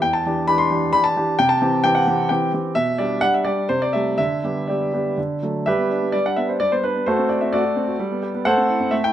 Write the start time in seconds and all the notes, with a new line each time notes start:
0.02 E2 G5
0.13 A5
0.26 E3 D4 G4
0.47 E3 D4 G4 B5
0.58 C6
0.71 E3 D4 G4
0.93 E3 D4 G4 B5
1.04 A5
1.16 E3 D4 G4
1.39 C3 G5
1.49 A5
1.61 E3 C4 G4
1.84 E3 C4 G4 G5
1.95 F#5
2.07 E3 C4 G4
2.29 E3 C4 G4 G5
2.53 E3 C4 G4
2.75 B2 E5
2.98 G3 D4 G4 D5
3.21 G3 D4 G4 F#5
3.34 E5
3.44 G3 D4 G4 D5
3.69 C3 C5
3.82 D5
3.93 G3 A3 G4 E5
4.18 D3 E5
4.44 G3 B3 G4
4.68 G3 B3 G4 D5
4.93 G3 B3 G4
5.18 D3
5.42 F#3 A3 A4
5.66 G3 G4 B4 E5
5.78 B3
5.90 D4
6.02 B3
6.12 G3 D5
6.25 D4 F#5
6.36 B3 E5
6.49 D4 C5
6.60 G3 D5
6.72 B3 C5
6.84 D4 B4
6.96 B3
7.06 A3 F#4 A4 C5
7.18 C4
7.29 F#4 D5
7.41 C4 E5
7.53 A3 F#4 A4 D5
7.64 F#4
7.76 C4
7.88 F#4
7.99 G3
8.11 B3
8.23 G4
8.34 B3
8.45 A3 A4 C5 F#5
8.57 C4
8.69 E4
8.80 C4
8.91 A3 E5
9.04 E4 G5